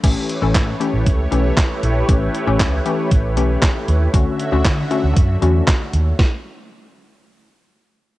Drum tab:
CC |x-------|--------|--------|--------|
HH |xxxxxxxx|xxxxxxxx|xxxxxxxx|--------|
CP |--x---x-|--x---x-|--x---x-|--------|
SD |--o---o-|--o---o-|--o---o-|o-------|
BD |o-o-o-o-|o-o-o-o-|o-o-o-o-|o-------|